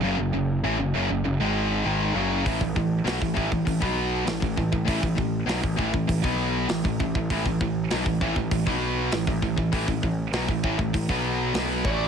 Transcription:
<<
  \new Staff \with { instrumentName = "Lead electric guitar" } { \time 4/4 \key a \lydian \tempo 4 = 99 r1 | r1 | r1 | r1 |
r2. r8 d''8 | }
  \new Staff \with { instrumentName = "Lead electric guitar" } { \time 4/4 \key a \lydian r1 | r1 | r1 | r1 |
r2. r8 fis'8 | }
  \new Staff \with { instrumentName = "Distorted electric guitar" } { \clef bass \time 4/4 \key a \lydian <fis, cis>16 <fis, cis>16 <fis, cis>8 <a, e>16 <fis, cis>16 <fis, cis>16 <fis, cis>16 <fis, cis>16 <gis, dis gis>8. <gis, dis gis>8 <fis, cis fis>8 | <a, e>16 <a, e>16 <a, e>8 <b, fis>16 <a, e>16 <a, e>16 <a, e>16 <a, e>16 <b, fis b>8. <a, e>16 <a, e>16 <a, e>16 <a, e>16 | <a, e>16 <a, e>16 <a, e>8 <b, fis>16 <a, e>16 <a, e>16 <a, e>16 <a, e>16 <b, fis b>8. <a, e>16 <a, e>16 <a, e>16 <a, e>16 | <a, e>16 <a, e>16 <a, e>8 <b, fis>16 <a, e>16 <a, e>16 <a, e>16 <a, e>16 <b, fis b>8. <a, e>16 <a, e>16 <a, e>16 <a, e>16 |
<a, e>16 <a, e>16 <a, e>8 <b, fis>16 <a, e>16 <a, e>16 <a, e>16 <a, e>16 <b, fis b>8. <b, fis b>8 <a, e a>8 | }
  \new Staff \with { instrumentName = "Distorted electric guitar" } { \clef bass \time 4/4 \key a \lydian <fis, cis>16 <fis, cis>16 <fis, cis>8 <a, e>16 <fis, cis>16 <fis, cis>16 <fis, cis>16 <fis, cis>16 <gis, dis gis>8. <gis, dis gis>8 <fis, cis fis>8 | <a, e>16 <a, e>16 <a, e>8 <b, fis>16 <a, e>16 <a, e>16 <a, e>16 <a, e>16 <b, fis b>8. <a, e>16 <a, e>16 <a, e>16 <a, e>16 | <a, e>16 <a, e>16 <a, e>8 <b, fis>16 <a, e>16 <a, e>16 <a, e>16 <a, e>16 <b, fis b>8. <a, e>16 <a, e>16 <a, e>16 <a, e>16 | <a, e>16 <a, e>16 <a, e>8 <b, fis>16 <a, e>16 <a, e>16 <a, e>16 <a, e>16 <b, fis b>8. <a, e>16 <a, e>16 <a, e>16 <a, e>16 |
<a, e>16 <a, e>16 <a, e>8 <b, fis>16 <a, e>16 <a, e>16 <a, e>16 <a, e>16 <b, fis b>8. <b, fis b>8 <a, e a>8 | }
  \new Staff \with { instrumentName = "Picked electric bass" } { \clef bass \time 4/4 \key a \lydian fis,,16 fis,,16 fis,,8 a,,16 fis,,16 fis,,16 fis,,16 fis,,16 gis,,8. gis,,8 fis,,8 | a,,16 a,,16 a,,8 b,,16 a,,16 a,,16 a,,16 a,,16 b,,8. a,,16 a,,16 a,,16 a,,16 | a,,16 a,,16 a,,8 b,,16 a,,16 a,,16 a,,16 a,,16 b,,8. a,,16 a,,16 a,,16 a,,16 | a,,16 a,,16 a,,8 b,,16 a,,16 a,,16 a,,16 a,,16 b,,8. a,,16 a,,16 a,,16 a,,16 |
a,,16 a,,16 a,,8 b,,16 a,,16 a,,16 a,,16 a,,16 b,,8. b,,8 a,,8 | }
  \new DrumStaff \with { instrumentName = "Drums" } \drummode { \time 4/4 r4 r4 r4 r4 | <hho bd>16 bd16 bd8 <hho sn>16 bd16 bd16 bd16 <hho bd>16 bd8. <hho sn>16 bd16 bd16 bd16 | <hho bd>16 bd16 bd8 <hho sn>16 bd16 bd16 bd16 <hho bd>16 bd8. <hho sn>16 bd16 bd16 bd16 | <hho bd>16 bd16 bd8 <hho sn>16 bd16 bd16 bd16 <hho bd>16 bd8. <hho sn>16 bd16 bd16 bd16 |
<hho bd>16 bd16 bd8 <hho sn>16 bd16 bd16 bd16 <hho bd>16 bd8. <hho sn>8 bd8 | }
>>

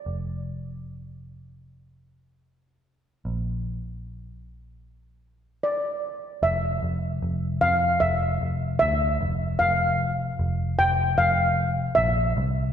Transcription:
<<
  \new Staff \with { instrumentName = "Steel pan" } { \time 4/4 \key f \major \tempo 4 = 75 r1 | r2. d''4 | e''4 r8 f''8 e''4 e''4 | f''4 r8 g''8 f''4 e''4 | }
  \new Staff \with { instrumentName = "Picked electric bass" } { \clef bass \time 4/4 \key f \major f,,1 | bes,,1 | f,,8 f,,8 f,,8 f,8 f,,8 f,,8 d,8 f,,8 | f,,4 f,,8 f,,8 f,,4 bes,,8 c,8 | }
>>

